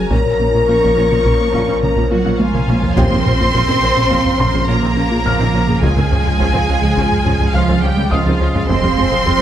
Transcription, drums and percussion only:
0.11 taiko
0.83 taiko
1.12 taiko mid
1.26 taiko
1.54 taiko
1.83 taiko mid
1.98 taiko
2.26 taiko low-mid
2.40 taiko high
2.54 taiko mid
2.69 taiko high
2.83 taiko low
2.97 taiko
3.11 taiko low-mid
3.26 taiko low-mid
3.40 taiko low-mid
3.55 taiko
3.69 taiko low-mid
4.12 taiko
4.26 taiko low-mid
4.40 taiko low-mid
4.55 taiko low-mid
5.26 taiko
5.69 taiko low-mid
5.84 taiko
5.98 taiko low-mid
6.12 taiko low-mid
6.27 taiko low-mid
6.40 taiko
6.55 taiko low-mid
6.98 taiko
7.12 taiko low-mid
7.26 taiko low-mid
7.41 taiko low-mid
8.12 taiko
8.55 taiko low-mid
8.69 taiko
8.83 taiko low-mid
8.98 taiko low-mid
9.12 taiko low-mid
9.26 taiko

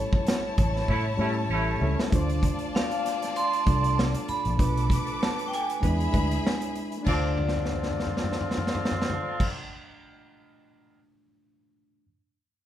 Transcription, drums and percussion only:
0.13 kick
0.27 snare, closed hi-hat
0.58 kick, closed hi-hat
0.76 snare
0.88 kick
1.99 snare
2.12 kick, closed hi-hat
2.29 closed hi-hat
2.43 kick, closed hi-hat
2.59 closed hi-hat
2.76 snare
2.91 closed hi-hat
3.06 snare, closed hi-hat
3.22 snare, closed hi-hat
3.36 closed hi-hat
3.53 closed hi-hat
3.66 kick, closed hi-hat
3.84 closed hi-hat
3.99 snare
4.15 closed hi-hat
4.28 closed hi-hat
4.45 closed hi-hat
4.59 kick, closed hi-hat
4.77 closed hi-hat
4.90 kick, closed hi-hat
5.07 closed hi-hat
5.23 snare
5.39 closed hi-hat
5.53 closed hi-hat
5.70 closed hi-hat
5.83 kick, closed hi-hat
6.00 closed hi-hat
6.14 kick, closed hi-hat
6.31 closed hi-hat
6.47 snare
6.62 closed hi-hat
6.75 closed hi-hat
6.92 closed hi-hat
7.07 kick, crash
7.38 floor tom
7.48 snare
7.56 floor tom
7.65 snare
7.72 floor tom
7.83 snare
7.90 floor tom
8.00 snare
8.07 floor tom
8.17 snare
8.23 floor tom
8.32 snare
8.41 floor tom
8.51 snare
8.57 floor tom
8.67 snare
8.75 floor tom
8.85 snare
8.91 floor tom
9.02 snare
9.10 floor tom
9.40 kick, crash

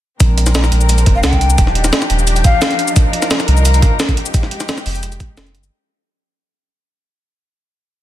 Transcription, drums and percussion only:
0.20 kick, closed hi-hat, shaker
0.38 closed hi-hat
0.47 snare, closed hi-hat, shaker
0.55 snare, closed hi-hat, shaker
0.64 snare, shaker
0.72 closed hi-hat
0.81 shaker
0.89 closed hi-hat, shaker
0.98 closed hi-hat, shaker
1.06 kick, closed hi-hat
1.24 snare, closed hi-hat, shaker
1.33 kick, closed hi-hat
1.41 closed hi-hat
1.50 shaker
1.58 kick, closed hi-hat, shaker
1.67 snare
1.75 closed hi-hat
1.84 snare, closed hi-hat, shaker
1.93 snare, closed hi-hat, shaker
2.02 snare, shaker
2.10 closed hi-hat
2.19 shaker
2.27 closed hi-hat, shaker
2.36 closed hi-hat, shaker
2.44 kick, closed hi-hat, shaker
2.62 snare, closed hi-hat, shaker
2.71 closed hi-hat
2.79 closed hi-hat
2.88 shaker
2.96 kick, closed hi-hat, shaker
3.13 closed hi-hat
3.22 snare, closed hi-hat, shaker
3.31 snare, closed hi-hat, shaker
3.40 snare, shaker
3.48 closed hi-hat
3.57 shaker
3.65 closed hi-hat, shaker
3.74 closed hi-hat, shaker
3.82 kick, closed hi-hat
4.00 snare, closed hi-hat, shaker
4.09 kick, closed hi-hat
4.17 closed hi-hat
4.26 shaker
4.34 kick, closed hi-hat, shaker
4.43 snare
4.51 closed hi-hat
4.60 snare, closed hi-hat, shaker
4.69 snare, closed hi-hat, shaker
4.78 snare, shaker
4.86 open hi-hat
4.95 shaker
5.03 closed hi-hat, shaker
5.12 closed hi-hat, shaker
5.20 kick, closed hi-hat, shaker
5.37 snare, closed hi-hat, shaker
5.47 closed hi-hat
5.55 closed hi-hat
5.64 shaker

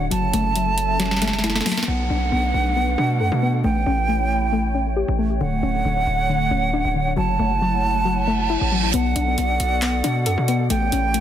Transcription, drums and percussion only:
0.11 closed hi-hat
0.33 closed hi-hat
0.56 closed hi-hat
0.78 closed hi-hat
1.00 snare, closed hi-hat
1.06 snare
1.11 snare
1.17 snare
1.22 snare, closed hi-hat
1.28 snare
1.33 snare
1.39 snare
1.44 snare, closed hi-hat
1.50 snare
1.55 snare
1.61 snare
1.66 snare, open hi-hat
1.72 snare
1.77 snare
1.83 snare
8.94 closed hi-hat
9.16 closed hi-hat
9.38 closed hi-hat
9.60 closed hi-hat
9.82 clap, closed hi-hat
10.04 closed hi-hat
10.26 closed hi-hat
10.48 closed hi-hat
10.70 closed hi-hat
10.92 closed hi-hat
11.14 closed hi-hat

